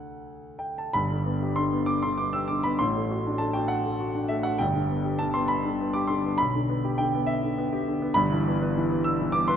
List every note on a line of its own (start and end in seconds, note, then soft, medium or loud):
0.00 0.89 D2 soft
0.00 0.90 D3 soft
0.00 0.90 A3 soft
0.00 0.91 A4 soft
0.00 0.61 F#5 medium
0.59 0.78 G5 medium
0.78 0.95 A5 medium
0.93 2.76 G1 medium
0.93 2.76 G2 medium
0.93 1.57 B5 loud
1.11 1.36 D3 soft
1.26 1.51 B3 medium
1.42 1.67 G4 medium
1.56 1.83 D3 medium
1.56 1.88 C6 loud
1.73 2.18 B3 medium
1.86 2.03 D6 loud
2.03 2.29 D3 medium
2.03 2.19 C6 medium
2.18 2.44 B3 soft
2.18 2.34 D6 medium
2.33 2.59 G4 medium
2.33 2.49 E6 loud
2.48 2.75 D3 soft
2.48 2.64 D6 medium
2.63 2.81 B3 medium
2.63 2.80 B5 medium
2.79 4.56 A1 medium
2.79 4.57 A2 medium
2.79 3.40 C6 loud
2.96 3.20 A3 soft
3.11 3.35 F#4 medium
3.26 3.50 D4 medium
3.38 3.65 A3 soft
3.38 3.55 A5 medium
3.53 3.99 F#4 medium
3.53 3.70 G5 medium
3.68 4.29 F#5 medium
3.86 4.10 A3 medium
4.00 4.25 F#4 soft
4.15 4.39 D4 medium
4.28 4.55 A3 medium
4.28 4.45 E5 medium
4.43 4.60 F#4 medium
4.43 4.59 F#5 medium
4.58 6.34 G1 medium
4.58 6.34 G2 medium
4.58 5.18 G5 medium
4.75 4.99 D3 medium
4.90 5.14 B3 medium
5.05 5.28 G4 medium
5.19 5.44 D3 medium
5.19 5.34 A5 loud
5.34 5.80 B3 medium
5.34 5.49 C6 loud
5.48 5.93 B5 loud
5.66 5.88 D3 medium
5.81 6.04 B3 soft
5.93 6.18 G4 medium
5.93 6.08 D6 medium
6.08 6.33 D3 medium
6.08 6.38 C6 medium
6.25 6.39 B3 medium
6.38 8.12 B1 medium
6.38 6.97 B5 loud
6.55 6.78 D3 medium
6.70 6.92 B3 medium
6.84 7.07 G4 medium
6.98 7.23 D3 medium
6.98 7.27 G5 medium
7.15 7.57 B3 medium
7.26 7.85 E5 medium
7.43 7.66 D3 medium
7.58 7.81 B3 medium
7.73 7.95 G4 medium
7.88 8.10 D3 medium
8.02 8.16 B3 medium
8.14 9.57 G1 medium
8.14 9.57 G2 medium
8.14 9.04 B5 loud
8.32 8.54 E3 medium
8.48 8.70 B3 medium
8.62 8.85 B4 medium
8.77 9.00 E3 medium
8.92 9.33 B3 medium
9.04 9.34 E6 loud
9.22 9.44 E3 medium
9.32 9.57 B3 medium
9.32 9.48 D6 loud
9.48 9.57 B4 medium
9.48 9.57 C6 loud